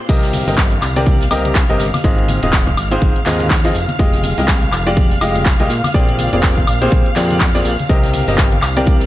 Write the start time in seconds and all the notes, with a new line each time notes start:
Already playing: C5 C6
0.09 C2 C3 C4 G4 A#4 D#5 F5 F6, kick, closed hi-hat, crash, tambourine
0.23 snare, closed hi-hat
0.33 open hi-hat, tambourine, high conga
0.47 G1 C3 C4 G4 A#4 D#5, snare, closed hi-hat, tambourine
0.57 kick, snare, clap, closed hi-hat, tambourine
0.72 closed hi-hat, high conga
0.82 C2, clap, closed hi-hat, open hi-hat, tambourine, high woodblock
0.96 C3 C4 G4 A#4 D5, closed hi-hat, tambourine
1.06 kick, closed hi-hat, tambourine, high conga
1.21 snare, closed hi-hat
1.31 C2 C3 C4 G4 A#4 D#5, closed hi-hat, open hi-hat, tambourine, high woodblock
1.45 closed hi-hat, tambourine, high conga
1.55 kick, snare, clap, closed hi-hat
1.69 G1 C3 C4 G4 A#4 D#5, closed hi-hat
1.79 G1, snare, closed hi-hat, open hi-hat, tambourine
1.94 snare, closed hi-hat, tambourine, high conga, high woodblock
2.04 G#1 G#2 C4 F4 G#4 D#5, kick, closed hi-hat, tambourine
2.18 closed hi-hat
2.28 closed hi-hat, open hi-hat, tambourine, high conga
2.43 D#1 G#2 C4 F4 G#4 D#5, closed hi-hat, tambourine
2.52 kick, snare, clap, closed hi-hat, tambourine
2.67 kick, closed hi-hat, high conga
2.77 G#1, closed hi-hat, open hi-hat, tambourine, high woodblock
2.91 G#2 C4 F4 G#4 C5, closed hi-hat, tambourine
3.01 G#1, kick, closed hi-hat, tambourine, high conga
3.16 closed hi-hat
3.26 D#2 G#2 C4 F4 G#4 D#5, clap, closed hi-hat, open hi-hat, tambourine
3.40 closed hi-hat, tambourine, high conga
3.50 kick, snare, clap, closed hi-hat, tambourine
3.65 F3 C4 F4 G#4 D#5, snare, closed hi-hat
3.74 F1, closed hi-hat, open hi-hat, tambourine
3.88 closed hi-hat, tambourine, high conga
3.99 F1 G#3 F4 G4 D#5, kick, closed hi-hat, tambourine
4.12 snare, closed hi-hat
4.23 open hi-hat, tambourine, high conga
4.38 C2 G#3 F4 G4 D#5, snare, closed hi-hat, tambourine
4.48 kick, snare, clap, closed hi-hat
4.62 closed hi-hat, high conga
4.72 F1, clap, closed hi-hat, open hi-hat, tambourine, high woodblock
4.86 G#3 F4 G4 D5, closed hi-hat, tambourine
4.97 kick, closed hi-hat, tambourine, high conga
5.11 snare, closed hi-hat
5.21 F1 G#3 F4 G4 D#5, closed hi-hat, open hi-hat, tambourine, high woodblock
5.35 closed hi-hat, tambourine, high conga
5.45 kick, snare, clap, closed hi-hat, tambourine
5.60 C2 A#2 G#3 F4 G4 D#5, closed hi-hat
5.69 A#2, snare, closed hi-hat, open hi-hat, tambourine
5.84 snare, closed hi-hat, tambourine, high conga, high woodblock
5.94 A#1 A#2 C4 G4 G#4 D5, kick, closed hi-hat, tambourine
6.09 closed hi-hat
6.19 closed hi-hat, open hi-hat, tambourine, high conga
6.33 F1 A#2 C4 G4 G#4 D5, closed hi-hat, tambourine
6.43 kick, snare, clap, closed hi-hat, tambourine
6.57 kick, closed hi-hat, high conga
6.67 A#1, closed hi-hat, open hi-hat, tambourine, high woodblock
6.82 A#2 C4 G4 G#4 C5, closed hi-hat, tambourine
6.92 A#1, kick, closed hi-hat, tambourine, high conga
7.06 closed hi-hat
7.16 F2 A#2 C4 G4 G#4 D5, clap, closed hi-hat, open hi-hat, tambourine
7.30 closed hi-hat, tambourine, high conga
7.40 kick, snare, clap, closed hi-hat, tambourine
7.55 A#2 C4 G4 G#4 D5, snare, closed hi-hat
7.65 A#1, closed hi-hat, open hi-hat, tambourine
7.79 closed hi-hat, tambourine, high conga
7.89 C2 C3 C4 G4 A#4 D#5, kick, closed hi-hat, tambourine
8.04 snare, closed hi-hat
8.14 open hi-hat, tambourine, high conga
8.28 G1 C3 C4 G4 A#4 D#5, snare, closed hi-hat, tambourine
8.38 kick, snare, clap, closed hi-hat, tambourine
8.52 closed hi-hat, high conga
8.62 C2, clap, closed hi-hat, open hi-hat, tambourine, high woodblock
8.77 C3 C4 G4 A#4 D5, closed hi-hat, tambourine
8.87 kick, closed hi-hat, tambourine, high conga
9.01 snare, closed hi-hat